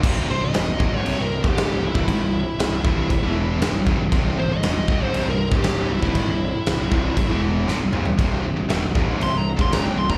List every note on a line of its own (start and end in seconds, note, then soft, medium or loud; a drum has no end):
0.02 0.27 C1 loud
0.02 0.27 C2 medium
0.02 0.27 G2 loud
0.02 0.28 C3 loud
0.02 kick loud
0.02 crash loud
0.02 crash medium
0.28 0.41 C1 medium
0.28 0.39 C2 medium
0.28 0.39 G2 medium
0.28 0.42 C5 loud
0.40 0.53 C1 medium
0.40 0.52 C2 medium
0.40 0.53 G2 medium
0.45 0.97 D#5 medium
0.53 0.66 E1 medium
0.53 0.65 E2 medium
0.53 0.66 B2 loud
0.53 snare loud
0.53 crash medium
0.65 0.79 C1 medium
0.65 0.77 C2 medium
0.65 0.78 G2 medium
0.78 0.92 C1 medium
0.78 0.91 C2 medium
0.78 0.92 G2 loud
0.78 kick loud
0.92 1.05 C#1 loud
0.92 1.04 C#2 medium
0.92 1.05 G#2 loud
0.97 1.18 C#5 medium
1.04 1.17 C1 medium
1.04 1.16 C2 medium
1.04 1.17 G2 loud
1.04 crash medium
1.18 1.42 C1 medium
1.18 1.39 C2 medium
1.18 1.39 G2 medium
1.22 1.45 A#4 medium
1.43 1.80 C#1 loud
1.43 1.81 C#2 medium
1.43 1.81 G#2 loud
1.43 1.82 C#3 loud
1.43 kick loud
1.47 1.83 G4 loud
1.58 snare loud
1.58 crash medium
1.81 1.94 C1 medium
1.81 1.93 C2 medium
1.81 1.94 G2 medium
1.86 3.34 E4 medium
1.94 2.07 C1 loud
1.94 2.07 C2 loud
1.94 2.07 G2 loud
1.94 kick loud
2.07 2.20 G#1 loud
2.07 2.20 G#2 medium
2.07 2.20 D#3 loud
2.07 kick medium
2.07 crash medium
2.21 2.44 C1 medium
2.21 2.41 C2 medium
2.21 2.41 G2 medium
2.58 2.70 C1 medium
2.58 2.71 C2 medium
2.58 2.72 G2 medium
2.58 snare loud
2.58 crash medium
2.70 2.83 C1 medium
2.70 2.83 C2 medium
2.70 2.84 G2 medium
2.84 3.08 C1 medium
2.84 3.09 C2 medium
2.84 3.10 G2 loud
2.84 3.10 C3 medium
2.84 kick loud
3.10 3.22 C1 medium
3.10 3.22 C2 medium
3.10 3.23 G2 medium
3.10 kick medium
3.10 crash medium
3.22 3.58 E1 loud
3.22 3.60 E2 medium
3.22 3.61 B2 loud
3.22 3.61 E3 loud
3.60 3.73 G1 loud
3.60 3.73 G2 loud
3.60 3.74 D3 loud
3.60 snare loud
3.60 crash medium
3.73 3.85 C1 medium
3.73 3.86 C2 medium
3.73 3.87 G2 medium
3.87 3.98 C1 loud
3.87 3.99 C2 loud
3.87 3.99 G2 loud
3.87 kick loud
3.99 4.11 C1 medium
3.99 4.11 C2 medium
3.99 4.12 G2 medium
4.12 4.35 C1 loud
4.12 4.37 C2 loud
4.12 4.37 G2 loud
4.12 4.38 C3 medium
4.12 kick loud
4.12 crash medium
4.36 4.48 C1 medium
4.36 4.50 C2 medium
4.36 4.51 G2 medium
4.36 4.51 C5 loud
4.49 4.61 C1 medium
4.49 4.64 C2 medium
4.49 4.64 G2 medium
4.49 5.04 D#5 loud
4.62 4.74 E1 loud
4.62 4.75 E2 medium
4.62 4.76 B2 loud
4.62 snare loud
4.62 crash medium
4.75 4.87 C1 medium
4.75 4.88 C2 medium
4.75 4.89 G2 medium
4.88 5.00 C1 medium
4.88 5.01 C2 medium
4.88 5.01 G2 medium
4.88 kick loud
5.00 5.13 C#1 loud
5.00 5.13 C#2 medium
5.00 5.14 G#2 loud
5.04 5.26 C5 loud
5.13 5.25 C1 medium
5.13 5.26 C2 loud
5.13 5.26 G2 loud
5.13 crash medium
5.26 5.50 C1 medium
5.26 5.47 C2 medium
5.26 5.47 G2 medium
5.26 5.52 A#4 loud
5.51 5.87 C#1 loud
5.51 5.89 C#2 medium
5.51 5.90 G#2 medium
5.51 5.90 C#3 loud
5.51 5.90 G4 loud
5.51 kick loud
5.64 snare loud
5.64 crash medium
5.90 6.02 C1 medium
5.90 6.02 C2 medium
5.90 6.03 G2 medium
5.90 7.40 E4 loud
6.02 6.15 C1 loud
6.02 6.15 C2 medium
6.02 6.16 G2 loud
6.02 kick loud
6.15 6.27 G#1 loud
6.15 6.28 G#2 loud
6.15 6.28 D#3 loud
6.15 kick medium
6.15 crash medium
6.28 6.52 C1 medium
6.28 6.49 C2 medium
6.28 6.49 G2 medium
6.66 6.78 C1 medium
6.66 6.78 C2 medium
6.66 6.79 G2 medium
6.66 snare loud
6.66 crash medium
6.79 6.91 C1 medium
6.79 6.90 C2 medium
6.79 6.91 G2 medium
6.91 7.15 C1 loud
6.91 7.16 C2 medium
6.91 7.17 G2 medium
6.91 7.17 C3 medium
6.91 kick loud
7.17 7.29 C1 medium
7.17 7.28 C2 medium
7.17 7.29 G2 medium
7.17 kick medium
7.17 crash medium
7.28 7.65 E1 loud
7.28 7.67 E2 medium
7.28 7.67 B2 medium
7.28 7.67 E3 loud
7.68 7.80 G1 loud
7.68 7.79 G2 medium
7.68 7.79 D3 loud
7.68 snare medium
7.80 7.92 C1 medium
7.80 7.91 C2 medium
7.80 7.91 G2 medium
7.92 8.05 C1 loud
7.92 8.04 C2 loud
7.92 8.05 G2 loud
7.92 mid tom loud
8.05 8.18 C1 medium
8.05 8.16 C2 medium
8.05 8.18 G2 medium
8.05 floor tom medium
8.18 8.42 C1 loud
8.18 8.43 C2 medium
8.18 8.44 G2 loud
8.18 8.44 C3 loud
8.18 kick loud
8.18 crash medium
8.44 8.57 C1 medium
8.44 8.55 C2 medium
8.44 8.55 G2 medium
8.56 8.69 C1 medium
8.56 8.68 C2 medium
8.56 8.69 G2 medium
8.69 8.81 E1 medium
8.69 8.81 E2 medium
8.69 8.82 B2 loud
8.69 snare loud
8.69 crash medium
8.82 8.94 C1 medium
8.82 8.94 C2 medium
8.82 8.95 G2 medium
8.95 9.07 C1 loud
8.95 9.06 C2 medium
8.95 9.07 G2 loud
8.95 kick loud
9.06 9.20 C#1 loud
9.06 9.18 C#2 medium
9.06 9.19 G#2 loud
9.19 9.32 C1 medium
9.19 9.30 C2 loud
9.19 9.31 G2 loud
9.19 crash medium
9.23 9.37 C6 loud
9.32 9.57 C1 medium
9.32 9.53 C2 medium
9.32 9.53 G2 medium
9.37 9.48 A#5 medium
9.57 9.94 C#1 loud
9.57 9.95 C#2 medium
9.57 9.95 G#2 loud
9.57 9.96 C#3 loud
9.57 kick loud
9.61 9.73 C6 loud
9.72 9.85 A#5 loud
9.72 snare loud
9.72 crash medium
9.85 9.97 G5 medium
9.96 10.08 C1 medium
9.96 10.08 C2 medium
9.96 10.09 G2 medium
9.96 10.10 C6 loud
10.09 10.18 C1 loud
10.09 10.18 C2 loud
10.09 10.18 G2 loud
10.09 10.18 A#5 loud
10.09 kick loud